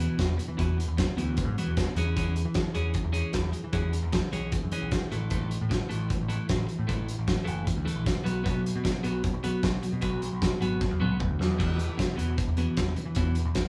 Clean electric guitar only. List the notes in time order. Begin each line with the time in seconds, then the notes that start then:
Already playing: E2
0.00 B2 E3
0.18 E2 B2
0.38 E2 B2
0.57 E2 B2 E3
0.77 E2 B2
0.97 E2 B2
1.17 E2 B2 E3
1.38 E2 B2
1.58 E2 B2 E3
1.78 E2 B2
1.97 E3 G#3 C#4
2.16 E3 G#3 C#4
2.35 E3 G#3
2.55 E3 G#3
2.74 E3 G#3 C#4
2.95 E3 G#3
3.12 E3 G#3 C#4
3.32 E3 G#3
3.52 E3 G#3
3.73 E3 G#3 C#4
3.92 E3 G#3
4.12 E3 G#3
4.32 E3 G#3 C#4
4.53 E3 G#3
4.72 E3 G#3 C#4
4.92 E3 G#3
5.11 A2 E3 A3
5.30 A2 E3 A3
5.49 A2 E3
5.69 A2 E3
5.89 A2 E3 A3
6.09 A2 E3
6.29 A2 E3 A3
6.48 A2 E3
6.67 A2 E3
6.87 A2 E3 A3
7.07 A2 E3
7.27 A2 E3
7.44 A2 E3 A3
7.65 A2 E3
7.85 A2 E3 A3
8.05 A2 E3
8.24 B2 F#3 B3
8.43 B2 F#3 B3
8.62 B2 F#3
8.84 B2 F#3
9.03 B2 F#3 B3
9.23 B2 F#3
9.43 B2 F#3 B3
9.62 B2 F#3
9.83 B2 F#3
10.01 B2 F#3 B3
10.22 B2 F#3
10.42 B2 F#3
10.61 B2 F#3 B3
10.81 B2 F#3
11.00 B2 F#3 B3
11.20 B2 F#3
11.39 B2 F#3
11.58 E2 B2 E3
11.78 E2 B2
11.97 E2 B2
12.16 E2 B2 E3
12.38 E2 B2
12.57 E2 B2 E3
12.77 E2 B2
12.96 E2 B2
13.17 E2 B2 E3
13.37 E2 B2
13.55 E2 B2